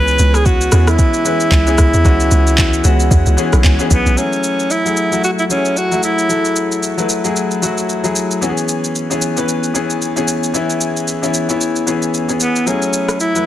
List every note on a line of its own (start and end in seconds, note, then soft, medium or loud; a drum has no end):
0.00 0.18 C#2 loud
0.00 0.58 E3 medium
0.00 0.58 G#3 medium
0.00 0.58 B3 medium
0.00 0.58 C#4 medium
0.00 0.58 G#4 medium
0.00 0.36 B4 loud
0.08 shaker medium
0.19 0.69 C#2 loud
0.19 shaker loud
0.34 0.47 G#4 loud
0.34 cross-stick medium
0.34 shaker medium
0.46 0.90 F#4 loud
0.46 kick loud
0.46 shaker medium
0.61 shaker medium
0.71 0.97 E2 medium
0.71 1.16 E3 medium
0.71 1.16 G#3 medium
0.71 1.16 B3 medium
0.71 1.17 C#4 medium
0.71 1.17 G#4 medium
0.71 cross-stick loud
0.71 shaker loud
0.87 3.64 E4 loud
0.87 cross-stick loud
0.87 shaker medium
0.99 kick loud
0.99 shaker medium
1.14 shaker soft
1.24 1.58 E3 medium
1.24 1.58 G#3 medium
1.24 1.58 B3 medium
1.24 1.58 C#4 medium
1.24 1.58 B4 medium
1.24 shaker loud
1.40 shaker medium
1.51 1.77 C#2 loud
1.51 kick loud
1.51 clap loud
1.51 shaker medium
1.66 1.98 E3 loud
1.66 1.98 G#3 medium
1.66 1.98 B3 medium
1.66 1.98 C#4 medium
1.66 1.99 G#4 loud
1.66 shaker medium
1.78 1.93 C#2 loud
1.78 kick loud
1.78 cross-stick loud
1.78 shaker loud
1.94 2.04 E2 medium
1.94 shaker medium
2.04 2.30 C#2 loud
2.04 2.70 E3 medium
2.04 2.70 G#3 medium
2.04 2.70 B3 medium
2.04 2.71 C#4 medium
2.04 2.71 F#4 loud
2.04 kick loud
2.04 shaker medium
2.20 shaker medium
2.31 2.82 C#2 loud
2.31 shaker loud
2.47 shaker medium
2.58 kick loud
2.58 clap loud
2.58 shaker medium
2.74 shaker medium
2.84 3.10 C#2 medium
2.84 3.28 E3 medium
2.84 3.29 G#3 medium
2.84 3.29 B3 medium
2.84 3.29 C#4 medium
2.84 3.29 F#4 loud
2.84 shaker loud
3.00 shaker medium
3.11 3.26 E2 loud
3.11 kick loud
3.11 shaker medium
3.26 3.37 C#2 medium
3.26 shaker soft
3.37 3.70 E3 medium
3.37 3.70 G#3 medium
3.37 3.70 B3 medium
3.37 3.71 C#4 medium
3.37 3.71 G#4 loud
3.37 shaker medium
3.53 3.63 B1 medium
3.53 cross-stick loud
3.53 shaker medium
3.64 3.79 C#2 loud
3.64 kick loud
3.64 clap loud
3.64 shaker medium
3.79 4.10 E3 medium
3.79 4.10 G#3 medium
3.79 4.11 B3 medium
3.79 4.11 C#4 medium
3.79 4.11 G#4 loud
3.79 shaker medium
3.91 4.05 B1 medium
3.91 4.20 B3 medium
3.91 kick loud
3.91 shaker loud
4.06 4.17 B1 medium
4.06 shaker medium
4.16 4.70 F#3 medium
4.16 4.70 A3 medium
4.16 4.73 C#4 medium
4.16 4.71 E4 medium
4.16 4.71 G#4 medium
4.16 shaker medium
4.33 shaker soft
4.44 shaker medium
4.59 shaker medium
4.70 5.24 E4 loud
4.70 shaker medium
4.85 5.06 F#3 medium
4.85 5.06 A3 medium
4.85 5.06 E4 medium
4.85 5.07 G#4 medium
4.85 shaker medium
4.97 shaker medium
5.12 5.43 F#3 medium
5.12 5.43 A3 medium
5.12 5.44 E4 medium
5.12 5.44 F#4 medium
5.12 shaker medium
5.24 5.31 F#4 loud
5.24 shaker medium
5.39 5.44 E4 medium
5.39 shaker soft
5.49 5.82 F#3 medium
5.49 5.83 A3 medium
5.49 5.79 C#4 medium
5.49 5.83 E4 medium
5.49 5.83 G#4 medium
5.49 shaker medium
5.65 shaker medium
5.77 6.04 F#4 loud
5.77 shaker medium
5.91 6.23 F#3 medium
5.91 6.23 A3 medium
5.91 6.23 E4 medium
5.91 6.23 F#4 medium
5.91 shaker soft
6.03 6.79 E4 medium
6.03 shaker loud
6.19 shaker medium
6.29 6.83 F#3 medium
6.29 6.83 A3 medium
6.29 6.83 E4 medium
6.29 6.83 A4 medium
6.29 shaker medium
6.45 shaker soft
6.56 shaker medium
6.72 shaker medium
6.83 shaker medium
6.97 7.18 F#3 medium
6.97 7.19 A3 medium
6.97 7.19 E4 medium
6.97 7.19 B4 medium
6.97 shaker medium
7.09 shaker medium
7.24 7.55 F#3 medium
7.24 7.56 A3 medium
7.24 7.56 E4 medium
7.24 7.56 G#4 medium
7.24 shaker medium
7.36 shaker medium
7.51 shaker soft
7.62 7.95 F#3 medium
7.62 7.95 A3 medium
7.62 7.95 E4 medium
7.62 7.96 F#4 medium
7.62 shaker medium
7.78 shaker medium
7.89 shaker medium
8.04 8.35 F#3 medium
8.04 8.35 A3 medium
8.04 8.36 E4 medium
8.04 8.36 G#4 medium
8.04 shaker soft
8.16 shaker loud
8.31 shaker medium
8.41 8.95 E3 medium
8.41 8.95 B3 medium
8.41 8.95 C#4 medium
8.41 8.50 F#4 medium
8.41 shaker medium
8.49 8.99 G#4 loud
8.57 shaker soft
8.69 shaker medium
8.84 shaker medium
8.95 shaker medium
9.10 9.31 E3 medium
9.10 9.31 B3 medium
9.10 9.31 C#4 medium
9.10 9.31 G#4 medium
9.10 shaker medium
9.22 shaker medium
9.36 9.68 E3 medium
9.36 9.68 B3 medium
9.36 9.68 C#4 medium
9.36 9.69 B4 medium
9.36 shaker medium
9.49 shaker medium
9.63 shaker soft
9.74 10.07 E3 medium
9.74 10.07 B3 medium
9.74 10.08 C#4 medium
9.74 10.08 G#4 loud
9.74 shaker medium
9.90 shaker medium
10.02 shaker medium
10.16 10.47 E3 medium
10.16 10.48 B3 medium
10.16 10.48 C#4 medium
10.16 10.48 G#4 loud
10.16 shaker soft
10.28 shaker loud
10.43 shaker medium
10.54 11.07 E3 medium
10.54 11.07 B3 medium
10.54 11.08 C#4 medium
10.54 11.08 E4 medium
10.54 shaker medium
10.70 shaker soft
10.81 shaker medium
10.97 shaker medium
11.08 shaker medium
11.22 11.43 E3 medium
11.22 11.43 B3 medium
11.22 11.43 C#4 medium
11.22 11.44 E4 medium
11.22 shaker medium
11.34 shaker medium
11.49 11.80 E3 medium
11.49 11.80 B3 medium
11.49 11.81 C#4 medium
11.49 11.81 E4 medium
11.49 shaker medium
11.61 shaker medium
11.76 shaker soft
11.86 12.20 E3 medium
11.86 12.20 B3 medium
11.86 12.20 C#4 medium
11.86 12.20 G#4 medium
11.86 shaker medium
12.02 shaker medium
12.14 shaker medium
12.28 12.60 E3 medium
12.28 12.60 B3 medium
12.28 12.60 C#4 medium
12.28 12.61 G#4 medium
12.28 shaker soft
12.40 12.69 B3 medium
12.40 shaker loud
12.56 shaker medium
12.66 13.20 F#3 medium
12.66 13.20 A3 medium
12.66 13.20 C#4 medium
12.66 13.20 E4 medium
12.66 13.20 G#4 medium
12.66 shaker medium
12.82 shaker soft
12.93 shaker medium
13.09 cross-stick medium
13.09 shaker medium
13.20 13.46 E4 medium
13.20 shaker medium
13.35 13.46 F#3 medium
13.35 13.46 A3 medium
13.35 13.46 E4 medium
13.35 13.46 B4 medium
13.35 shaker medium